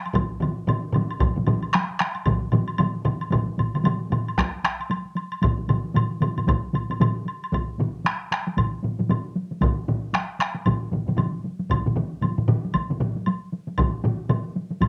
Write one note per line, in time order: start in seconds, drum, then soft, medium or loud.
0.06 taiko high soft
0.06 high woodblock soft
0.14 taiko loud
0.14 taiko low-mid loud
0.14 taiko mid loud
0.14 taiko high medium
0.14 high woodblock medium
0.32 taiko high soft
0.40 taiko low-mid loud
0.40 taiko mid loud
0.40 taiko high medium
0.40 high woodblock soft
0.58 taiko high soft
0.67 taiko low-mid loud
0.67 taiko mid loud
0.67 taiko high medium
0.67 high woodblock medium
0.84 taiko high soft
0.93 taiko low-mid loud
0.93 taiko mid loud
0.93 taiko high medium
0.93 high woodblock soft
1.10 taiko high soft
1.10 high woodblock soft
1.19 taiko loud
1.19 taiko low-mid medium
1.19 taiko mid medium
1.19 taiko high medium
1.19 high woodblock soft
1.36 taiko low-mid medium
1.36 taiko mid medium
1.36 taiko high medium
1.46 taiko low-mid loud
1.46 taiko mid loud
1.46 taiko high medium
1.46 high woodblock soft
1.63 taiko high soft
1.63 high woodblock soft
1.73 taiko rim medium
1.73 taiko high medium
1.73 high woodblock soft
1.90 taiko high soft
2.00 taiko rim medium
2.00 taiko high medium
2.00 high woodblock soft
2.15 taiko high soft
2.15 high woodblock soft
2.26 taiko loud
2.26 taiko low-mid medium
2.26 taiko mid medium
2.26 taiko high medium
2.26 high woodblock medium
2.42 taiko high soft
2.52 taiko low-mid loud
2.52 taiko mid loud
2.52 taiko high medium
2.52 high woodblock soft
2.68 taiko high soft
2.68 high woodblock soft
2.78 taiko low-mid medium
2.78 taiko mid loud
2.78 taiko high medium
2.78 high woodblock medium
2.95 taiko high soft
3.05 taiko low-mid loud
3.05 taiko mid medium
3.05 taiko high medium
3.05 high woodblock soft
3.21 taiko high soft
3.21 high woodblock soft
3.30 taiko medium
3.30 taiko low-mid loud
3.30 taiko mid loud
3.30 taiko high medium
3.30 high woodblock soft
3.46 taiko high soft
3.58 taiko low-mid medium
3.58 taiko mid medium
3.58 taiko high medium
3.58 high woodblock soft
3.74 taiko low-mid medium
3.74 taiko mid medium
3.74 taiko high soft
3.74 high woodblock soft
3.84 taiko low-mid medium
3.84 taiko mid medium
3.84 taiko high medium
3.84 high woodblock medium
4.00 taiko high soft
4.10 taiko low-mid loud
4.10 taiko mid medium
4.10 taiko high medium
4.10 high woodblock soft
4.28 taiko high soft
4.28 high woodblock soft
4.38 taiko rim medium
4.38 taiko loud
4.38 taiko high medium
4.38 high woodblock medium
4.55 taiko high soft
4.64 taiko rim medium
4.64 taiko high medium
4.64 high woodblock soft
4.80 taiko high soft
4.80 high woodblock soft
4.90 taiko high medium
4.90 high woodblock medium
5.05 taiko high soft
5.15 taiko high medium
5.15 high woodblock soft
5.32 taiko high soft
5.32 high woodblock soft
5.42 taiko loud
5.42 taiko low-mid loud
5.42 taiko mid loud
5.42 taiko high medium
5.42 high woodblock medium
5.58 taiko high medium
5.68 taiko low-mid medium
5.68 taiko mid loud
5.68 taiko high medium
5.68 high woodblock soft
5.84 taiko high soft
5.94 taiko low-mid loud
5.94 taiko mid medium
5.94 taiko high medium
5.94 high woodblock medium
6.11 taiko high soft
6.21 taiko low-mid loud
6.21 taiko mid loud
6.21 taiko high soft
6.21 high woodblock soft
6.37 taiko low-mid medium
6.37 taiko mid medium
6.37 taiko high soft
6.37 high woodblock soft
6.47 taiko loud
6.47 taiko low-mid medium
6.47 taiko mid medium
6.47 taiko high medium
6.47 high woodblock medium
6.63 taiko high soft
6.73 taiko low-mid medium
6.73 taiko mid medium
6.73 taiko high medium
6.73 high woodblock soft
6.89 taiko low-mid medium
6.89 taiko mid medium
6.89 taiko high soft
6.89 high woodblock soft
7.00 taiko low-mid loud
7.00 taiko mid loud
7.00 taiko high medium
7.00 high woodblock medium
7.16 taiko high soft
7.26 taiko high soft
7.26 high woodblock soft
7.42 taiko high soft
7.42 high woodblock soft
7.52 taiko medium
7.52 taiko low-mid medium
7.52 taiko mid medium
7.52 taiko high medium
7.52 high woodblock soft
7.78 taiko low-mid medium
7.78 taiko mid medium
7.78 taiko high soft
8.05 taiko rim medium
8.05 taiko high medium
8.05 high woodblock soft
8.31 taiko rim medium
8.31 taiko high medium
8.47 taiko high medium
8.57 taiko medium
8.57 taiko low-mid medium
8.57 taiko mid medium
8.57 taiko high medium
8.57 high woodblock soft
8.83 taiko low-mid medium
8.83 taiko mid medium
8.83 taiko high medium
8.99 taiko low-mid medium
8.99 taiko mid medium
8.99 taiko high medium
9.09 taiko low-mid medium
9.09 taiko mid medium
9.09 taiko high medium
9.09 high woodblock soft
9.36 taiko high medium
9.51 taiko high medium
9.61 taiko loud
9.61 taiko low-mid medium
9.61 taiko mid medium
9.61 taiko high medium
9.61 high woodblock soft
9.88 taiko low-mid medium
9.88 taiko mid medium
9.88 taiko high soft
10.13 taiko rim medium
10.13 taiko high medium
10.13 high woodblock soft
10.39 taiko rim medium
10.39 taiko high medium
10.55 taiko high medium
10.66 taiko medium
10.66 taiko low-mid medium
10.66 taiko mid medium
10.66 taiko high medium
10.66 high woodblock soft
10.92 taiko low-mid medium
10.92 taiko mid medium
10.92 taiko high medium
11.06 taiko low-mid medium
11.06 taiko mid medium
11.06 taiko high medium
11.17 taiko low-mid medium
11.17 taiko mid medium
11.17 taiko high medium
11.17 high woodblock soft
11.44 taiko high medium
11.59 taiko high medium
11.69 taiko medium
11.69 taiko low-mid medium
11.69 taiko mid medium
11.69 taiko high medium
11.69 high woodblock medium
11.86 taiko low-mid medium
11.86 taiko mid medium
11.96 taiko low-mid medium
11.96 taiko mid loud
11.96 taiko high medium
12.21 taiko low-mid medium
12.21 taiko mid medium
12.21 taiko high medium
12.21 high woodblock soft
12.38 taiko low-mid medium
12.38 taiko mid medium
12.48 taiko low-mid loud
12.48 taiko mid loud
12.48 taiko high medium
12.65 taiko high medium
12.74 taiko medium
12.74 taiko low-mid medium
12.74 taiko mid medium
12.74 taiko high medium
12.74 high woodblock medium
12.90 taiko low-mid medium
12.90 taiko mid medium
13.00 taiko low-mid loud
13.00 taiko mid loud
13.00 taiko high medium
13.16 taiko high medium
13.26 taiko high medium
13.26 high woodblock soft
13.52 taiko high medium
13.67 taiko high medium
13.78 taiko loud
13.78 taiko low-mid loud
13.78 taiko mid loud
13.78 taiko high medium
13.78 high woodblock medium
14.04 taiko low-mid loud
14.04 taiko mid loud
14.04 taiko high medium
14.29 taiko low-mid loud
14.29 taiko mid loud
14.29 taiko high medium
14.29 high woodblock soft
14.56 taiko high medium
14.71 taiko high medium
14.81 taiko medium
14.81 taiko low-mid medium
14.81 taiko mid medium
14.81 taiko high medium
14.81 high woodblock medium